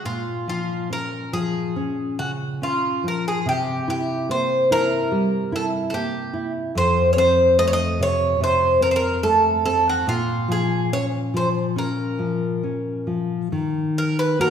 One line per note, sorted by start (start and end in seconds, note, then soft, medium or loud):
0.05 3.42 A#2 medium
0.05 0.48 F4 medium
0.48 0.89 F3 soft
0.48 0.88 F4 medium
0.90 1.31 C#4 soft
0.90 1.33 A#4 medium
1.33 1.74 F3 soft
1.33 2.14 G#4 medium
1.76 2.17 C#4 soft
2.19 2.60 C#3 medium
2.19 2.30 F#4 medium
2.62 3.02 C#4 soft
2.62 3.06 F4 medium
3.04 3.44 F3 soft
3.08 3.25 A#4 medium
3.28 3.48 G#4 medium
3.46 6.72 C3 medium
3.46 3.89 G4 medium
3.88 4.28 E4 soft
3.88 4.31 G4 medium
4.29 4.69 A#3 soft
4.29 4.72 C5 medium
4.71 5.11 E4 medium
4.71 5.55 A#4 medium
5.12 5.52 G3 soft
5.52 5.92 E4 medium
5.52 5.65 A4 medium
5.90 6.33 A#3 medium
5.90 5.95 A4 medium
5.94 6.51 G4 medium
6.33 6.74 E4 soft
6.75 10.02 F2 medium
6.75 7.12 C5 medium
7.13 7.57 C4 medium
7.13 7.18 C#5 medium
7.18 7.56 C5 medium
7.59 7.98 A3 medium
7.59 7.66 D#5 loud
7.68 7.73 C#5 medium
7.73 8.01 D#5 loud
8.00 8.39 C3 medium
8.00 8.39 C#5 medium
8.40 8.80 C3 medium
8.40 8.80 C5 medium
8.81 9.21 C4 medium
8.81 8.88 A#4 medium
8.91 8.96 C5 medium
8.96 9.22 A#4 medium
9.23 9.64 A3 medium
9.23 9.64 A4 medium
9.65 10.06 C4 medium
9.65 9.87 A4 medium
9.89 10.08 F#4 medium
10.07 13.47 A#2 medium
10.07 10.51 F4 medium
10.48 10.90 F3 medium
10.48 10.90 G#4 medium
10.93 11.33 C#4 soft
10.93 11.04 C#5 medium
11.34 11.75 F3 soft
11.34 11.48 C5 medium
11.76 12.18 C#4 soft
11.76 13.05 A#4 medium
12.19 12.62 F3 soft
12.63 13.07 C#4 soft
13.07 13.50 F3 soft
13.52 14.36 D#3 medium
13.98 14.17 A#4 medium
14.19 14.40 B4 medium
14.39 14.50 A#3 soft
14.39 14.50 D#4 soft
14.39 14.50 F#4 soft
14.39 14.50 A#4 medium